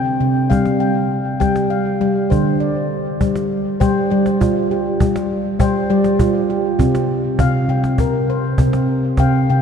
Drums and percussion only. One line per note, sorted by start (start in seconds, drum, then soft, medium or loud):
0.06 cajon slap soft
0.51 cajon bass soft
0.65 cajon slap soft
1.11 cajon slap soft
1.41 cajon bass soft
1.41 cajon slap soft
1.56 cajon slap soft
1.70 cajon slap soft
1.86 cajon slap soft
2.32 cajon bass soft
2.76 cajon slap soft
3.21 cajon bass soft
3.35 cajon slap soft
3.81 cajon bass medium
4.26 cajon slap soft
4.41 cajon bass medium
4.71 cajon slap soft
5.00 cajon bass medium
5.16 cajon slap soft
5.60 cajon bass medium
6.04 cajon slap soft
6.19 cajon bass medium
6.50 cajon slap soft
6.79 cajon bass medium
6.95 cajon slap soft
7.39 cajon bass medium
7.84 cajon slap soft
7.98 cajon bass medium
8.28 cajon slap soft
8.58 cajon bass medium
8.73 cajon slap soft
8.87 cajon slap soft
9.17 cajon bass medium
9.17 cajon slap soft